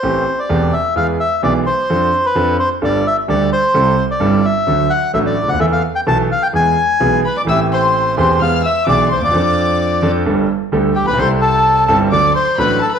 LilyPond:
<<
  \new Staff \with { instrumentName = "Violin" } { \time 4/4 \key a \minor \tempo 4 = 129 r1 | r1 | r1 | r2. r8 b''16 d'''16 |
e'''8 c'''4 c'''8 f'''8 e'''8 d'''8 c'''16 d'''16~ | d'''4.~ d'''16 r4. r16 g''16 b''16 | c'''8 a''4 a''8 d'''8 c'''8 b''8 a''16 b''16 | }
  \new Staff \with { instrumentName = "Bandoneon" } { \time 4/4 \key a \minor c''8. d''8. e''8 f''8 e''8 d''8 c''8~ | c''8. b'8. c''8 d''8 e''8 d''8 c''8~ | c''8. d''8. e''4 fis''8 e''16 d''8 fis''16 | e''16 f''8 g''16 a''8 f''16 g''16 gis''4. b'16 d''16 |
e''8 c''4 c''8 f''8 e''8 d''8 c''16 d''16~ | d''4.~ d''16 r4. r16 g'16 b'16 | c''8 a'4 a'8 d''8 c''8 b'8 a'16 b'16 | }
  \new Staff \with { instrumentName = "Grand piano" } { \clef bass \time 4/4 \key a \minor <a,, a, e a c' g'>8 r8 <e,, e, e a c' g'>8 r8 <e, e gis b gis'>8 r8 <b,, b, e gis b gis'>8 r8 | <f, f c' d' a'>8 r8 <f, f c' d' a'>8 r8 <g,, g, g a d' a'>8 r8 <d, d g a d' a'>8 r8 | <c, c g c' e' a'>8 r8 <g,, g, g c' e' a'>8 r8 <d, d fis a d' a'>8 r8 <a,, a, fis a d' a'>8 r32 cis,32 d,32 dis,32 | <e, e a b a'>8 r8 <b,, b, e a b a'>8 r8 <e, e gis b gis'>8 r8 <b,, b, e gis b gis'>8 r8 |
<a,, a, e a c' g'>4. <e,, e, e a c' g'>8 <e, e gis b gis'>8 r8 <b,, b, e gis b gis'>8 r32 d,32 dis,32 e,32 | <f, f c' d' a'>4. <f, f c' d' a'>8 <g,, g, g a d' a'>8 r8 <d, d g a d' a'>8 r32 a,,32 bes,,32 b,,32 | <c, c g c' e' a'>4. <g,, g, g c' e' a'>8 <d, d fis a d' a'>8 r8 <a,, a, fis a d' a'>8 r8 | }
>>